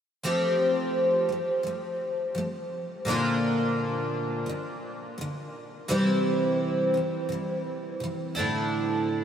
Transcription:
0.23 F3 A3 C4 G4
1.29 F3 A3
1.63 F3 A3
2.35 F3 A3
3.05 A#2 D3 A#3
3.09 D4 F4
4.46 A#2 D3
5.18 A#2 D3
5.88 C3 E3 G3 C4 E4
6.94 C3 E3
7.29 C3 E3
8.00 C3 E3
8.35 D3 A3 D4 E4
8.40 A2

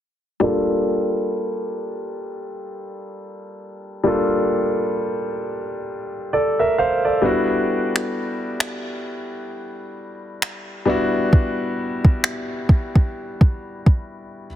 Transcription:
0.40 G3 A#3 D4 F4 A4
4.04 G3 A#3 D4 F4 A4
6.33 A4 D5
6.59 A#4 E5
6.78 C5 F5
7.05 A4 D5
7.22 G3 B3 D4 E4 F#4
7.96 finger snap
8.60 finger snap
10.42 finger snap
10.86 G3 B3 D4 E4 F#4
11.33 kick
12.05 kick
12.24 finger snap
12.69 kick
12.95 kick
13.41 kick
13.86 kick

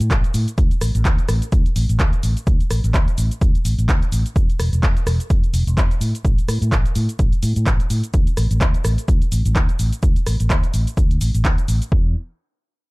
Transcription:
0.00 A2, closed hi-hat, shaker
0.11 A1, kick, clap, closed hi-hat, shaker
0.24 closed hi-hat, shaker
0.34 A2, open hi-hat, shaker
0.48 closed hi-hat, shaker
0.58 D2, kick, closed hi-hat, shaker
0.71 closed hi-hat, shaker
0.81 A1, cross-stick, open hi-hat, shaker
0.95 A1, closed hi-hat, shaker
1.05 D2, kick, clap, closed hi-hat, shaker
1.18 closed hi-hat, shaker
1.29 A1, cross-stick, open hi-hat, shaker
1.42 closed hi-hat, shaker
1.52 D2, kick, closed hi-hat, shaker
1.66 closed hi-hat, shaker
1.76 A1, open hi-hat, shaker
1.89 A1, closed hi-hat, shaker
2.00 D2, kick, clap, closed hi-hat, shaker
2.13 closed hi-hat, shaker
2.23 A1, open hi-hat, shaker
2.37 closed hi-hat, shaker
2.47 D2, kick, closed hi-hat, shaker
2.60 muted fingered electric bass stroke, closed hi-hat, shaker
2.71 A1, cross-stick, open hi-hat, shaker
2.84 A1, closed hi-hat, shaker
2.94 D2, kick, clap, closed hi-hat, shaker
3.08 closed hi-hat, shaker
3.18 A1, open hi-hat, shaker
3.31 closed hi-hat, shaker
3.41 D2, kick, closed hi-hat, shaker
3.55 muted fingered electric bass stroke, closed hi-hat, shaker
3.65 A1, open hi-hat, shaker
3.78 A1, closed hi-hat, shaker
3.89 D2, kick, clap, closed hi-hat, shaker
4.02 closed hi-hat, shaker
4.12 A1, open hi-hat, shaker
4.26 closed hi-hat, shaker
4.36 E2, kick, closed hi-hat, shaker
4.50 closed hi-hat, shaker
4.60 E1, cross-stick, open hi-hat, shaker
4.73 E1, closed hi-hat, shaker
4.83 E2, kick, clap, closed hi-hat, shaker
4.97 closed hi-hat, shaker
5.06 E1, cross-stick, open hi-hat, shaker
5.20 closed hi-hat, shaker
5.30 E2, kick, closed hi-hat, shaker
5.44 closed hi-hat, shaker
5.53 E1, open hi-hat, shaker
5.67 E1, closed hi-hat, shaker
5.77 E2, kick, clap, closed hi-hat, shaker
5.91 closed hi-hat, shaker
6.01 A2, open hi-hat, shaker
6.15 closed hi-hat, shaker
6.25 A1, kick, closed hi-hat, shaker
6.38 muted fingered electric bass stroke, closed hi-hat, shaker
6.48 A2, cross-stick, open hi-hat, shaker
6.62 A2, closed hi-hat, shaker
6.72 A1, kick, clap, closed hi-hat, shaker
6.86 closed hi-hat, shaker
6.95 A2, open hi-hat, shaker
7.09 closed hi-hat, shaker
7.19 A1, kick, closed hi-hat, shaker
7.32 muted fingered electric bass stroke, closed hi-hat, shaker
7.43 A2, open hi-hat, shaker
7.56 A2, closed hi-hat, shaker
7.66 A1, kick, clap, closed hi-hat, shaker
7.80 closed hi-hat, shaker
7.90 A2, open hi-hat, shaker
8.04 closed hi-hat, shaker
8.14 D2, kick, closed hi-hat, shaker
8.27 closed hi-hat, shaker
8.37 A1, cross-stick, open hi-hat, shaker
8.51 A1, closed hi-hat, shaker
8.61 D2, kick, clap, closed hi-hat, shaker
8.74 closed hi-hat, shaker
8.85 A1, cross-stick, open hi-hat, shaker
8.98 closed hi-hat, shaker
9.08 D2, kick, closed hi-hat, shaker
9.22 closed hi-hat, shaker
9.32 A1, open hi-hat, shaker
9.45 A1, closed hi-hat, shaker
9.55 D2, kick, clap, closed hi-hat, shaker
9.69 closed hi-hat, shaker
9.79 A1, open hi-hat, shaker
9.93 closed hi-hat, shaker
10.03 D2, kick, closed hi-hat, shaker
10.16 muted fingered electric bass stroke, closed hi-hat, shaker
10.27 A1, cross-stick, open hi-hat, shaker
10.40 A1, closed hi-hat, shaker
10.50 D2, kick, clap, closed hi-hat, shaker
10.63 closed hi-hat, shaker
10.74 A1, open hi-hat, shaker
10.87 closed hi-hat, shaker
10.97 D2, kick, closed hi-hat, shaker
11.11 closed hi-hat, shaker
11.21 A1, open hi-hat, shaker
11.34 A1, closed hi-hat, shaker
11.45 D2, kick, clap, closed hi-hat, shaker
11.58 closed hi-hat, shaker
11.68 A1, open hi-hat, shaker
11.82 closed hi-hat, shaker
11.92 E2, kick

